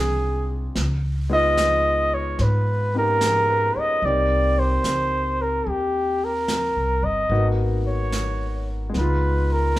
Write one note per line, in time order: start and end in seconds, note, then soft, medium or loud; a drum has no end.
0.00 0.71 C2 medium
0.00 0.76 G#3 soft
0.00 0.76 C4 soft
0.00 0.75 D4 soft
0.00 0.76 D#4 medium
0.00 0.76 F4 soft
0.00 0.51 G#4 medium
0.00 0.77 G#4 soft
0.00 0.76 G5 medium
0.75 2.35 C#2 medium
0.75 brush sweep soft
0.75 snare soft
1.30 4.03 G#3 medium
1.30 2.92 B3 medium
1.30 2.95 D#4 soft
1.30 4.03 F4 medium
1.30 2.15 D#5 loud
1.57 snare soft
1.57 hi-hat pedal soft
2.14 2.43 C#5 medium
2.39 3.72 G#2 medium
2.39 2.95 B4 medium
2.39 brush sweep soft
2.39 snare soft
2.93 4.03 B3 soft
2.93 4.03 C#4 soft
2.93 4.04 D#4 soft
2.93 3.37 G4 soft
2.98 3.80 A#4 loud
3.21 3.72 G#4 soft
3.21 snare soft
3.21 hi-hat pedal medium
3.50 3.91 B4 medium
3.76 4.19 C#5 soft
3.76 4.07 D#5 medium
3.76 muted upright bass stroke soft
4.02 4.80 C2 medium
4.02 7.29 A#3 soft
4.02 7.32 C4 soft
4.02 7.30 D#4 soft
4.02 7.32 G4 soft
4.02 4.60 D5 medium
4.02 brush sweep soft
4.59 5.43 C5 medium
4.84 5.62 C#2 medium
4.84 snare soft
4.84 hi-hat pedal soft
5.41 5.71 A#4 medium
5.66 6.72 D#2 medium
5.66 6.26 G4 medium
5.66 brush sweep soft
6.24 7.06 A#4 medium
6.48 snare soft
6.48 hi-hat pedal medium
6.76 7.01 C2 medium
7.02 7.28 G1 medium
7.02 7.50 D#5 medium
7.29 8.90 G#1 medium
7.29 8.94 A#3 soft
7.29 8.92 B3 soft
7.29 8.95 D#4 medium
7.29 8.95 F#4 medium
7.29 brush sweep soft
7.87 8.64 C#5 medium
8.12 snare soft
8.12 hi-hat pedal medium
8.90 9.79 G#3 soft
8.90 9.79 B3 soft
8.94 9.79 C#2 medium
8.94 9.79 D#4 soft
8.94 9.54 B4 medium
8.94 brush sweep soft
8.94 snare soft
9.00 9.79 F4 medium
9.52 9.79 A#4 medium